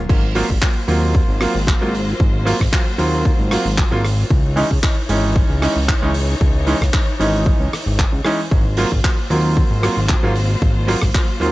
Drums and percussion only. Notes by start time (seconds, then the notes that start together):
0.09 kick, crash, shaker
0.35 open hi-hat, shaker
0.50 kick, shaker
0.62 kick, clap, shaker
0.88 open hi-hat, shaker
1.03 shaker
1.15 kick, shaker
1.30 shaker
1.41 cross-stick, open hi-hat, shaker
1.56 shaker
1.67 kick, clap, shaker
1.95 open hi-hat, shaker
2.09 shaker
2.20 kick, shaker
2.47 open hi-hat, shaker
2.60 kick, cross-stick, shaker
2.73 kick, clap, shaker
2.99 open hi-hat, shaker
3.14 shaker
3.25 kick, shaker
3.40 shaker
3.51 cross-stick, open hi-hat, shaker
3.66 shaker
3.78 kick, clap, shaker
4.05 cross-stick, open hi-hat, shaker
4.19 shaker
4.30 kick, shaker
4.57 open hi-hat, shaker
4.71 kick, shaker
4.83 kick, clap, shaker
5.09 open hi-hat, shaker
5.25 shaker
5.36 kick, shaker
5.51 shaker
5.62 cross-stick, open hi-hat, shaker
5.77 shaker
5.88 kick, clap, shaker
6.14 open hi-hat, shaker
6.30 shaker
6.41 kick, shaker
6.67 open hi-hat, shaker
6.81 kick, cross-stick, shaker
6.93 kick, clap, shaker
7.20 open hi-hat, shaker
7.35 shaker
7.46 kick, shaker
7.61 shaker
7.73 cross-stick, open hi-hat, shaker
7.86 shaker
7.99 kick, clap, shaker
8.25 cross-stick, open hi-hat, shaker
8.40 shaker
8.51 kick, shaker
8.77 open hi-hat, shaker
8.92 kick, shaker
9.04 kick, clap, shaker
9.30 open hi-hat, shaker
9.45 shaker
9.57 kick, shaker
9.72 shaker
9.83 cross-stick, open hi-hat, shaker
9.97 shaker
10.09 kick, clap, shaker
10.35 open hi-hat, shaker
10.50 shaker
10.62 kick, shaker
10.88 open hi-hat, shaker
11.02 kick, cross-stick, shaker
11.15 kick, clap, shaker
11.42 open hi-hat, shaker